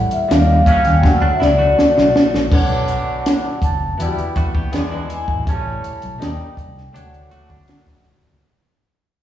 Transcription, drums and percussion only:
0.11 closed hi-hat
0.31 snare, closed hi-hat
0.66 kick, closed hi-hat
0.85 snare, closed hi-hat
1.03 kick, snare
1.42 snare
1.79 snare
1.98 snare
2.16 snare
2.34 snare
2.52 kick, crash
2.88 closed hi-hat
3.26 snare, closed hi-hat
3.62 kick, closed hi-hat
4.00 closed hi-hat
4.18 closed hi-hat
4.36 kick, closed hi-hat
4.55 kick
4.73 snare, closed hi-hat
5.10 closed hi-hat
5.28 kick
5.47 kick, closed hi-hat
5.84 closed hi-hat
6.02 closed hi-hat
6.22 snare, closed hi-hat
6.57 kick, closed hi-hat
6.77 snare
6.96 closed hi-hat
7.14 closed hi-hat
7.31 closed hi-hat
7.50 kick
7.68 snare, closed hi-hat
7.87 kick
8.04 closed hi-hat
8.23 kick

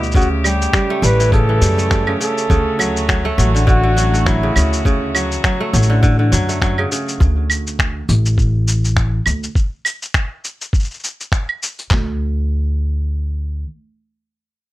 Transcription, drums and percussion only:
0.03 cabasa
0.12 kick, cabasa
0.16 cabasa
0.21 cabasa
0.44 cabasa, claves
0.62 cabasa
0.73 finger snap, kick, cabasa
1.03 cabasa
1.20 cabasa
1.32 kick, cabasa
1.62 cabasa
1.79 cabasa
1.91 finger snap, kick, cabasa
2.07 claves
2.21 cabasa
2.38 cabasa
2.50 kick, cabasa
2.80 cabasa, claves
2.97 cabasa
3.09 finger snap, kick, cabasa
3.39 cabasa
3.56 cabasa
3.68 kick, cabasa
3.98 cabasa
4.15 cabasa
4.26 finger snap, kick, cabasa
4.56 cabasa, claves
4.73 cabasa
4.85 kick, cabasa
5.15 cabasa, claves
5.32 cabasa
5.44 finger snap, kick, cabasa
5.74 cabasa
5.82 cabasa
6.03 kick, cabasa
6.33 cabasa
6.49 cabasa
6.62 finger snap, kick, cabasa
6.78 claves
6.92 cabasa
7.09 cabasa
7.20 kick, cabasa
7.50 cabasa, claves
7.67 cabasa
7.79 finger snap, kick, cabasa
8.09 cabasa
8.26 cabasa
8.38 kick, cabasa
8.68 cabasa
8.85 cabasa
8.97 finger snap, kick, cabasa
9.26 cabasa, claves
9.43 cabasa
9.55 kick, cabasa
9.85 cabasa, claves
10.02 cabasa
10.14 finger snap, kick, cabasa
10.45 cabasa
10.61 cabasa
10.73 kick, cabasa
10.80 cabasa
10.84 cabasa
10.91 cabasa
10.94 cabasa
10.99 cabasa
11.04 cabasa
11.21 cabasa
11.32 finger snap, kick, cabasa
11.49 claves
11.63 cabasa
11.79 cabasa
11.91 kick, clap, floor tom

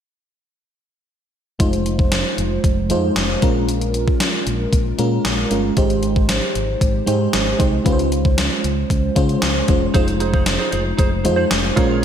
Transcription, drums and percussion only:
1.60 kick, closed hi-hat
1.73 closed hi-hat
1.86 closed hi-hat
1.99 kick
2.12 snare, closed hi-hat
2.38 closed hi-hat
2.64 kick, closed hi-hat
2.90 closed hi-hat
3.16 snare, closed hi-hat
3.42 kick, closed hi-hat
3.69 closed hi-hat
3.81 closed hi-hat
3.94 closed hi-hat
4.08 kick
4.20 snare, closed hi-hat
4.47 closed hi-hat
4.73 kick, closed hi-hat
4.99 closed hi-hat
5.25 snare, closed hi-hat
5.51 closed hi-hat
5.77 kick, closed hi-hat
5.90 closed hi-hat
6.03 closed hi-hat
6.16 kick
6.29 snare, closed hi-hat
6.55 closed hi-hat
6.81 kick, closed hi-hat
7.07 closed hi-hat
7.33 snare, closed hi-hat
7.60 kick, closed hi-hat
7.86 kick, closed hi-hat
7.99 closed hi-hat
8.12 closed hi-hat
8.25 kick
8.38 snare, closed hi-hat
8.64 closed hi-hat
8.90 kick, closed hi-hat
9.16 kick, closed hi-hat
9.29 closed hi-hat
9.42 snare, closed hi-hat
9.68 kick, closed hi-hat
9.95 kick, closed hi-hat
10.08 closed hi-hat
10.20 closed hi-hat
10.34 kick
10.46 snare, closed hi-hat
10.72 closed hi-hat
10.99 kick, closed hi-hat
11.25 closed hi-hat
11.51 snare, closed hi-hat
11.77 kick, closed hi-hat

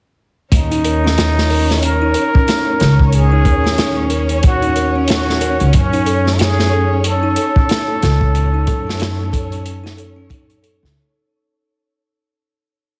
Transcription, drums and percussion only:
0.52 kick, closed hi-hat
0.72 closed hi-hat
0.85 closed hi-hat
1.06 snare
1.18 snare, closed hi-hat
1.38 snare
1.50 open hi-hat
1.71 snare
1.83 closed hi-hat
2.14 closed hi-hat
2.35 kick
2.48 snare, closed hi-hat
2.80 snare, closed hi-hat
2.99 kick
3.12 closed hi-hat
3.45 kick, closed hi-hat
3.66 snare
3.78 snare, closed hi-hat
4.10 closed hi-hat
4.29 closed hi-hat
4.43 kick, closed hi-hat
4.62 closed hi-hat
4.76 closed hi-hat
5.08 snare, closed hi-hat
5.30 snare
5.41 closed hi-hat
5.60 closed hi-hat
5.73 kick, closed hi-hat
5.93 closed hi-hat
6.06 closed hi-hat
6.27 snare
6.39 snare, closed hi-hat
6.59 snare
7.04 closed hi-hat
7.36 closed hi-hat
7.56 kick
7.69 snare, closed hi-hat
8.02 snare, closed hi-hat
8.21 kick
8.35 closed hi-hat
8.67 kick, closed hi-hat
8.89 snare
9.00 snare, closed hi-hat
9.33 kick, closed hi-hat
9.52 closed hi-hat
9.66 closed hi-hat
9.86 snare
9.98 closed hi-hat
10.30 kick, closed hi-hat
10.50 closed hi-hat
10.64 closed hi-hat
10.85 snare

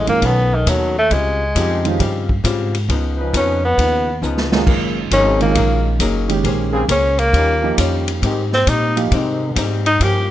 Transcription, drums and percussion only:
0.07 ride
0.22 kick, ride
0.66 kick, hi-hat pedal, ride
1.11 kick, ride
1.55 kick, hi-hat pedal, ride
1.85 ride
2.00 kick, ride
2.29 kick
2.44 kick, hi-hat pedal, ride
2.74 ride
2.89 kick, ride
3.34 kick, hi-hat pedal, ride
3.78 kick, ride
4.23 hi-hat pedal
4.37 snare
4.52 snare
4.67 kick, crash
5.11 kick, hi-hat pedal, ride
5.40 ride
5.55 kick, ride
6.00 kick, hi-hat pedal, ride
6.29 ride
6.44 kick, ride
6.89 kick, hi-hat pedal, ride
7.19 ride
7.34 kick, ride
7.78 kick, hi-hat pedal, ride
8.08 ride
8.23 kick, ride
8.53 snare
8.67 kick, hi-hat pedal, ride
8.97 ride
9.12 kick, ride
9.56 kick, hi-hat pedal, ride
9.86 ride
10.00 kick, ride

